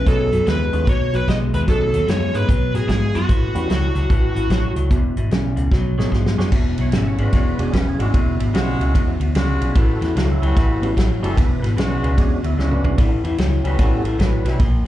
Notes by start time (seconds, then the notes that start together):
0.06 B1 B2 F#3 A3 C#4 D#4 G#4 A4, kick, closed hi-hat
0.32 F#2 B2 F#3, closed hi-hat
0.47 D#2 B2 G#3 B4, snare, closed hi-hat
0.73 D#2 B2 G#3 A3 C#4 D#4 F#4, closed hi-hat
0.87 B1 B2 F#3 C#5, kick, closed hi-hat
1.13 B1 B2 F#3 B4, closed hi-hat
1.28 B1 B2 G#3 D#5, kick, snare, closed hi-hat
1.53 D#2 B2 G#3 B4, closed hi-hat
1.67 B1 B2 F#3 A3 C#4 D#4 G#4 A4, kick, closed hi-hat
1.94 D#2 B2 F#3, closed hi-hat
2.07 F#2 B2 G#3 C#5, snare, closed hi-hat
2.33 G#2 B2 G#3 A3 C#4 D#4 G#4 B4, closed hi-hat
2.48 B2 F#3, kick, closed hi-hat
2.74 A2 B2 F#3 G#4, closed hi-hat
2.88 G#2 B2 G#3 G#4, kick, snare, closed hi-hat
3.15 F#2 B2 G#3 F#4, closed hi-hat
3.29 A1 A2 E3, kick, closed hi-hat
3.55 E2 A2 E3 G3 B3 C#4 F#4, closed hi-hat
3.69 C#2 A2 F#3, snare, closed hi-hat
3.95 C#2 A2 F#3, closed hi-hat
4.10 A1 A2 E3, kick, closed hi-hat
4.36 A1 A2 E3, closed hi-hat
4.50 A1 A2 F#3, kick, snare, closed hi-hat
4.76 C#2 A2 F#3, closed hi-hat
4.90 E1 E2 B2, kick, closed hi-hat
5.17 G#1 E2 B2, closed hi-hat
5.31 B1 E2 C#3, snare, closed hi-hat
5.57 C#2 E2 C#3, closed hi-hat
5.71 B1 B2 F#3, kick, snare
5.98 A2 B2 F#3 A3 C#4 D#4 G#4, snare
6.12 G#2 B2 G#3, kick, snare
6.26 snare
6.37 E2 F#2 B2 G#3 C#4 D4 F#4, snare
6.52 E1 E2 B2, kick, snare, crash
6.78 B1 E2 B2 C#5, ride
6.92 G#1 E2 C#3 E5, snare, ride
7.08 C#5
7.18 G#1 E2 C#3 G#3 C#4 D4 F#4, ride
7.22 B4
7.33 E1 E2 B2 C#5, kick, snare, ride
7.49 B4
7.59 E1 E2 B2 G#3 C#4 D4 F#4 G#4, ride
7.73 E1 E2 C#3 B4, kick, snare, ride
7.89 G#4
7.99 G#1 E2 C#3 G#3 C#4 D4 E4 F#4, ride
8.14 E1 E2 B2, kick, ride
8.39 G#1 E2 B2, ride
8.53 B1 E2 C#3 G3 G#3 C4 C#4 F4 F#4, snare, ride
8.79 C#2 E2 C#3 G#3 C#4 E4 F#4, ride
8.94 E2 B2, kick, ride
9.20 D2 E2 B2, ride
9.35 C#2 E2 C#3 G#3 C#4 D4 F#4, snare, ride
9.61 B1 E2 C#3, ride
9.73 A1 A2 E3 G#4, kick, ride
9.77 F#4 A4
9.90 F#4 A4
10.01 E2 A2 E3 A3 F#4, snare, ride
10.16 C#2 A2 F#3 A3 F#4, snare, ride
10.32 E4
10.42 C#2 A2 F#3 G3 B3 C#4 F#4, ride
10.56 A1 A2 E3, kick, snare, ride
10.82 A1 A2 E3 G3 B3 C#4 F#4, ride
10.96 A1 A2 F#3, kick, snare, ride
11.22 F#1 A2 F#3 G3 G#3 B3 C#4 D4 E4 A4, ride
11.36 E1 E2 B2 A#4, kick, snare, ride
11.40 B4
11.62 G#1 E2 B2, snare, ride
11.77 B1 E2 C#3 G#3 C#4 D4 F#4, snare, ride
12.03 C#2 E2 C#3, ride
12.17 E2 B2 G#3 C#4 D4 F#4 G#4, kick, snare, ride
12.33 F#4
12.43 D2 E2 B2 E4, ride
12.57 C#2 E2 C#3 G#3 C#4 D4 E4 F#4, snare
12.71 B3 D4, mid tom
12.83 B1 E2 C#3, floor tom
12.98 A1 A2 E3, kick, snare, ride
13.24 E2 A2 E3, ride
13.38 C#2 A2 F#3, snare, ride
13.64 C#2 A2 F#3 G3 B3 C#4 F#4 B4, ride
13.79 A1 A2 E3 G3 B3 C#4 F#4 A4, kick, snare, ride
14.04 A1 A2 E3, ride
14.19 A1 A2 F#3 B4, kick, snare, ride
14.44 B1 A2 F#3 G3 B3 C#4 E4, snare, ride
14.60 A#1 A#2 F3, kick, snare, ride